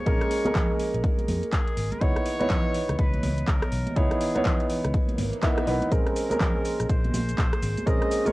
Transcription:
Already playing: analog synth pad A#3 G#4, muted trumpet C#5
0.06 fingered electric bass A#1, felt piano G#3 A#3 C#4 A#4, analog synth pad A#4, kick, closed hi-hat
0.21 cross-stick, closed hi-hat
0.31 open hi-hat
0.45 felt piano G#3 A#3 C#4 A#4, closed hi-hat, high conga
0.55 kick, clap, closed hi-hat, low conga
0.79 open hi-hat
0.94 fingered electric bass A#1, closed hi-hat
1.04 kick, closed hi-hat
1.19 closed hi-hat, high conga
1.28 fingered electric bass F2, open hi-hat, high conga
1.43 closed hi-hat
1.52 muted trumpet G#4, kick, clap, closed hi-hat
1.67 closed hi-hat
1.77 fingered electric bass G#1, open hi-hat
1.92 muted trumpet A#4, closed hi-hat, high conga
2.01 fingered electric bass C#2, analog synth pad E3 B3 C#5 D#5, felt piano B3 D#4 E4 C#5, muted trumpet C#5, kick, closed hi-hat
2.16 cross-stick, closed hi-hat
2.26 open hi-hat
2.40 felt piano B3 D#4 E4 C#5, closed hi-hat, high conga
2.50 kick, clap, closed hi-hat, low conga
2.75 open hi-hat
2.89 fingered electric bass C#2, cross-stick, closed hi-hat
2.99 fingered electric bass C#2, muted trumpet B4, kick, closed hi-hat
3.14 closed hi-hat, high conga
3.23 fingered electric bass C#2, open hi-hat, high conga
3.38 closed hi-hat
3.48 fingered electric bass C#2, muted trumpet A#4, kick, clap, closed hi-hat
3.63 cross-stick, closed hi-hat
3.72 fingered electric bass B1, open hi-hat
3.87 closed hi-hat, high conga
3.96 fingered electric bass C#2, felt piano B3 D#4 E4 C#5, muted trumpet G#4, kick, closed hi-hat
4.11 cross-stick, closed hi-hat
4.21 open hi-hat
4.35 felt piano B3 D#4 E4 C#5, closed hi-hat, high conga
4.45 kick, clap, closed hi-hat, low conga
4.60 closed hi-hat
4.70 open hi-hat
4.85 fingered electric bass C#2, cross-stick, closed hi-hat
4.94 kick, closed hi-hat, swell
5.09 closed hi-hat, high conga
5.18 fingered electric bass G#1, open hi-hat, high conga
5.33 closed hi-hat
5.42 felt piano B3 D#4 E4 E5, kick, clap, closed hi-hat
5.58 cross-stick, closed hi-hat
5.67 fingered electric bass B1, felt piano B3 D#4 E4 B4, open hi-hat
5.81 closed hi-hat, high conga
5.91 fingered electric bass A#1, felt piano G#3 C4 C#4 A#4, analog synth pad A#3 G#4 C6, muted trumpet A#4, kick, closed hi-hat, shaker
6.07 cross-stick, closed hi-hat
6.16 open hi-hat, shaker
6.30 felt piano G#3 C4 C#4 A#4, closed hi-hat, high conga, shaker
6.40 kick, clap, closed hi-hat, low conga, shaker
6.65 open hi-hat, shaker
6.80 fingered electric bass A#1, cross-stick, closed hi-hat, shaker
6.89 fingered electric bass A#1, muted trumpet C5, kick, closed hi-hat, shaker
7.04 closed hi-hat, high conga
7.14 fingered electric bass A#1, open hi-hat, high conga, shaker
7.29 closed hi-hat, shaker
7.38 fingered electric bass A#1, kick, clap, closed hi-hat, shaker
7.53 cross-stick, closed hi-hat
7.62 fingered electric bass G#1, open hi-hat, shaker
7.77 closed hi-hat, high conga, shaker
7.86 fingered electric bass A#1, felt piano G#3 C4 C#4 A#4, muted trumpet D#5, kick, closed hi-hat, shaker
8.02 cross-stick, closed hi-hat
8.11 open hi-hat, shaker
8.25 felt piano G#3 A#3 C#4 A#4, muted trumpet C#5, closed hi-hat, high conga, shaker

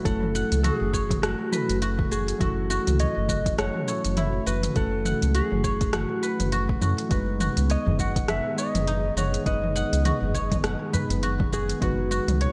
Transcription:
Already playing: analog synth pad E3 A3 F#4, synth keys F#3 C#4 E4 A4, guzheng E4 F#4 C#5, singing bowl F#4
0.03 analog synth bass F#1, synth keys F#3 A3 C#4 E4, electric slide guitar A4, guzheng F#5, kick, closed hi-hat, shaker
0.23 mid tom
0.35 guzheng F#5, shaker
0.52 analog synth bass C#2, closed hi-hat, shaker
0.63 guzheng F#4, electric slide guitar A4, closed hi-hat, mid tom, shaker
0.74 electric slide guitar G#4
0.81 analog synth bass F#1
0.93 guzheng C#5, kick, shaker
1.10 kick, closed hi-hat, mid tom, shaker
1.22 analog synth bass F#1, electric slide guitar F#4, guzheng F#5, cross-stick, closed hi-hat, shaker
1.50 synth keys F#3 C#4 E4 A4, guzheng B4, mid tom, shaker
1.69 analog synth bass F#1, closed hi-hat, shaker
1.82 guzheng F#4, closed hi-hat, shaker
1.99 kick, mid tom
2.11 analog synth bass F#1, guzheng F#4, electric slide guitar G#4, shaker
2.28 closed hi-hat, shaker
2.38 analog synth bass F#1, synth keys F#3 C#4 E4, electric slide guitar F#4, guzheng F#4, kick, closed hi-hat, mid tom, shaker
2.42 synth keys A4
2.70 guzheng F#4, shaker
2.87 analog synth bass C#2, closed hi-hat, mid tom, shaker
3.00 guzheng C#5, electric slide guitar D#5, closed hi-hat, shaker
3.17 analog synth bass F#1
3.29 guzheng F#4, kick, mid tom, shaker
3.46 kick, closed hi-hat, shaker
3.58 analog synth bass F#1, electric slide guitar C#5, guzheng F#5, cross-stick, closed hi-hat, shaker
3.76 mid tom
3.85 synth keys F#3 C#4 E4, guzheng C#5, shaker
3.89 synth keys A4
4.05 analog synth bass F#1, closed hi-hat, shaker
4.17 guzheng E4, closed hi-hat, mid tom, shaker
4.46 analog synth bass F#1, guzheng F#4, electric slide guitar B4, shaker
4.63 closed hi-hat, mid tom, shaker
4.73 analog synth bass F#1, synth keys F#3 A3 C#4 E4, electric slide guitar A4, guzheng F#5, kick, closed hi-hat, shaker
5.05 guzheng F#5, mid tom, shaker
5.22 analog synth bass C#2, closed hi-hat, shaker
5.35 guzheng F#4, electric slide guitar G#4, closed hi-hat, shaker
5.52 analog synth bass F#1, mid tom
5.64 guzheng C#5, kick, shaker
5.81 kick, closed hi-hat, shaker
5.93 analog synth bass F#1, electric slide guitar F#4, guzheng F#5, cross-stick, closed hi-hat, mid tom, shaker
6.23 guzheng B4, shaker
6.40 analog synth bass F#1, closed hi-hat, mid tom, shaker
6.52 guzheng F#4, closed hi-hat, shaker
6.69 kick
6.80 analog synth bass F#2, synth keys F#3 C#4 E4 A4, guzheng F#4, mid tom, shaker
6.98 closed hi-hat, shaker
7.08 analog synth bass F#1, analog synth pad D#3 B3 G#4, synth keys G#3 B3 D#4, guzheng F#4, kick, closed hi-hat, shaker
7.13 synth keys B4
7.40 guzheng F#4, mid tom, shaker
7.57 analog synth bass C#2, closed hi-hat, shaker
7.70 guzheng C#5, electric slide guitar D#5, closed hi-hat, shaker
7.87 analog synth bass F#1, mid tom, udu
7.99 guzheng F#4, electric slide guitar F#5, kick, shaker
8.16 kick, closed hi-hat, shaker
8.28 analog synth bass F#1, electric slide guitar E5, guzheng F#5, cross-stick, closed hi-hat, mid tom, shaker
8.56 synth keys G#3 B3 D#4 B4, guzheng C#5, electric slide guitar D#5, shaker
8.75 analog synth bass F#1, closed hi-hat, mid tom, shaker
8.87 guzheng D#4, closed hi-hat, shaker
9.16 analog synth bass F#1, guzheng F#4, electric slide guitar C#5, mid tom, shaker
9.34 closed hi-hat, shaker
9.44 analog synth bass F#1, synth keys G#3 B3 D#4 B4, electric slide guitar D#5, guzheng F#5, kick, closed hi-hat, shaker
9.64 mid tom
9.76 guzheng F#5, shaker
9.93 analog synth bass C#2, closed hi-hat, shaker
10.05 guzheng F#4, closed hi-hat, mid tom, shaker
10.22 analog synth bass F#1, udu
10.34 guzheng C#5, kick, shaker
10.51 kick, closed hi-hat, mid tom, shaker
10.64 analog synth bass F#1, guzheng F#5, cross-stick, closed hi-hat, shaker
10.91 synth keys G#3 B3 D#4, guzheng B4, mid tom, udu, shaker
10.95 synth keys B4
11.10 analog synth bass F#1, closed hi-hat, shaker
11.23 guzheng F#4, closed hi-hat, shaker
11.40 kick, mid tom
11.52 analog synth bass F#1, guzheng F#4, electric slide guitar G#4, shaker
11.69 closed hi-hat, shaker
11.79 analog synth bass F#1, synth keys G#3 B3 D#4, guzheng F#4, analog synth pad F#4, kick, closed hi-hat, mid tom, shaker
11.83 electric slide guitar F#4, synth keys B4
12.11 guzheng F#4, shaker
12.28 analog synth bass C#2, closed hi-hat, mid tom, shaker
12.41 guzheng C#5, electric slide guitar C#5, closed hi-hat, shaker

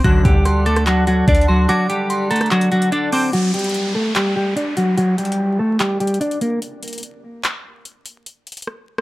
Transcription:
0.04 analog polysynth A1 F#2 D3, 808-style bass D2, accordion D3 D4 A4 F#5, clean electric guitar F#3 F#4, synth bell F#6, kick, closed hi-hat
0.25 808-style bass D2, clean electric guitar G3 G4, kick, closed hi-hat
0.45 synth bell C6, cross-stick, closed hi-hat
0.66 clean electric guitar A3 A4, synth bell D6, closed hi-hat
0.76 cross-stick, closed hi-hat
0.86 clean electric guitar F#3 F#4, clap, closed hi-hat
1.07 clean electric guitar F#3 F#4, closed hi-hat
1.28 808-style bass D2, clean electric guitar D4 D5, kick, closed hi-hat
1.35 closed hi-hat
1.41 closed hi-hat
1.48 clean electric guitar F#3 F#4, synth bell C6
1.69 clean electric guitar F#3 F#4, synth bell D6, closed hi-hat
1.89 clean electric guitar G3 G4, closed hi-hat
2.10 synth bell C6, closed hi-hat
2.31 clean electric guitar A3 A4, synth bell A#5, closed hi-hat
2.36 closed hi-hat
2.41 cross-stick, closed hi-hat
2.46 closed hi-hat
2.51 clean electric guitar F#3 F#4, clap, closed hi-hat
2.61 closed hi-hat
2.72 clean electric guitar F#3 F#4, closed hi-hat
2.82 closed hi-hat
2.92 clean electric guitar D4 D5, closed hi-hat
3.12 clean electric guitar C4 C5, synth bell D6, open hi-hat
3.33 clean electric guitar F#3 F#4, closed hi-hat, downlifter
3.54 clean electric guitar G3 G4, closed hi-hat
3.59 closed hi-hat
3.64 closed hi-hat
3.69 closed hi-hat
3.74 closed hi-hat
3.95 clean electric guitar A3 A4
4.15 clean electric guitar G3 G4, clap, closed hi-hat
4.36 clean electric guitar G3 G4
4.56 clean electric guitar D4 D5, closed hi-hat
4.77 clean electric guitar F#3 F#4, closed hi-hat
4.97 clean electric guitar F#3 F#4, closed hi-hat
5.18 clean electric guitar G3 G4, closed hi-hat
5.25 closed hi-hat
5.32 closed hi-hat
5.59 clean electric guitar A3 A4
5.80 clean electric guitar G3 G4, clap, closed hi-hat
6.00 clean electric guitar G3 G4, closed hi-hat
6.07 closed hi-hat
6.14 closed hi-hat
6.21 clean electric guitar D4 D5, closed hi-hat
6.31 closed hi-hat
6.41 clean electric guitar A#3 A#4, closed hi-hat
6.62 closed hi-hat
6.83 closed hi-hat
6.88 closed hi-hat
6.93 closed hi-hat
6.98 closed hi-hat
7.03 closed hi-hat
7.44 clap, closed hi-hat
7.85 closed hi-hat
8.06 closed hi-hat
8.26 closed hi-hat
8.47 closed hi-hat
8.52 closed hi-hat
8.57 closed hi-hat
8.62 closed hi-hat
8.67 cross-stick
8.98 cross-stick

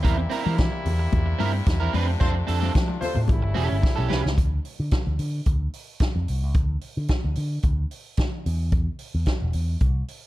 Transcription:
Already playing: french horn section C3 G3 A#3 E4
0.03 picked electric bass E2, clean electric guitar C4 E4 A#4, kick, closed hi-hat, muted conga
0.17 muted clean electric guitar stroke
0.30 clean electric guitar C4 E4 A#4, open hi-hat, muted conga
0.44 picked electric bass E3, clean electric guitar C4 E4 A#4, high conga
0.57 muted clean electric guitar stroke, kick, snare, closed hi-hat, muted conga
0.72 muted clean electric guitar stroke
0.85 picked electric bass E2, open hi-hat, low conga
0.99 muted clean electric guitar stroke
1.12 picked electric bass E2, kick, closed hi-hat, muted conga, high conga, low conga
1.26 muted clean electric guitar stroke
1.38 picked electric bass G2, clean electric guitar C4 E4 A#4, open hi-hat, muted conga, high conga
1.53 muted clean electric guitar stroke
1.66 picked electric bass E2, muted clean electric guitar stroke, kick, snare, closed hi-hat, muted conga
1.80 clean electric guitar C4 E4 A#4
1.93 picked electric bass F2, french horn section F3 A3 D4, clean electric guitar C4 D4 B4, open hi-hat, muted conga, high conga
2.08 muted clean electric guitar stroke
2.20 picked electric bass F2, clean electric guitar C4 D4 A4, horn section F4 A4 C5, kick, closed hi-hat, muted conga
2.35 muted clean electric guitar stroke
2.47 picked electric bass F2, clean electric guitar C4 D4 A4, open hi-hat, muted conga
2.60 clean electric guitar C4 D4 A4, high conga
2.73 picked electric bass F3, muted clean electric guitar stroke, kick, snare, closed hi-hat, muted conga
2.88 muted clean electric guitar stroke, high conga
3.01 horn section F4 A4 C5, open hi-hat, low conga
3.15 picked electric bass A2, muted clean electric guitar stroke, low conga
3.28 picked electric bass A1, french horn section C#3 G3 A3 E4, kick, closed hi-hat, high conga, low conga
3.42 picked electric bass G1, muted clean electric guitar stroke
3.54 picked electric bass E1, clean electric guitar C#4 G4 A4, open hi-hat, muted conga, high conga
3.69 picked electric bass G1, muted clean electric guitar stroke
3.81 muted clean electric guitar stroke, kick, snare, muted conga
3.96 picked electric bass B1, clean electric guitar C#4 G4 A4
4.08 picked electric bass C2, clean electric guitar C#4 G4 B4, snare, muted conga, high conga
4.24 picked electric bass C#2, muted clean electric guitar stroke, snare
4.38 picked electric bass D2, kick, closed hi-hat
4.65 open hi-hat
4.80 picked electric bass D3
4.91 kick, snare, closed hi-hat
5.07 picked electric bass D2
5.19 picked electric bass D3, open hi-hat
5.46 picked electric bass D2, kick, closed hi-hat
5.73 open hi-hat
6.00 kick, snare, closed hi-hat
6.16 picked electric bass F2
6.28 picked electric bass C2, open hi-hat
6.43 picked electric bass C#2
6.54 picked electric bass D2, kick, closed hi-hat
6.81 open hi-hat
6.97 picked electric bass D3
7.08 kick, snare, closed hi-hat
7.24 picked electric bass D2
7.35 picked electric bass D3, open hi-hat
7.63 picked electric bass D2, kick, closed hi-hat
7.91 open hi-hat
8.17 kick, snare, closed hi-hat
8.46 picked electric bass E2, open hi-hat
8.72 kick, closed hi-hat
8.99 open hi-hat
9.15 picked electric bass E2
9.26 kick, snare, closed hi-hat
9.42 picked electric bass E1
9.53 picked electric bass E2, open hi-hat
9.80 picked electric bass C2, kick, closed hi-hat
10.08 open hi-hat

